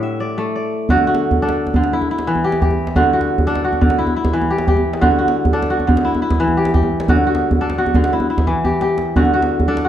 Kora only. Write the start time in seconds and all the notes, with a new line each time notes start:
Already playing: A2 A3 D4 G4
0.03 E5
0.20 D5
0.38 A3
0.55 D5
0.90 D3 F#4
1.07 F#4
1.42 D4 A4
1.76 D3
1.93 E4
2.11 E4
2.27 E3
2.44 G4
2.62 G4
2.96 D3 F#4
3.13 F#4
3.47 D4 A4
3.64 F#4
3.81 D3
3.98 E4
4.16 E4
4.33 E3
4.50 G4
4.68 G4
5.01 D3 F#4
5.19 F#4
5.53 D4 A4
5.70 F#4
5.87 D3
6.05 E4
6.22 E4
6.40 E3
6.57 G4
6.74 G4
7.09 D3 F#4
7.27 F#4
7.61 D4 A4
7.78 F#4
7.95 D3
8.13 E4
8.30 E4
8.47 E3
8.65 G4
8.82 G4
9.16 D3 F#4
9.34 F#4
9.68 D4 A4
9.85 F#4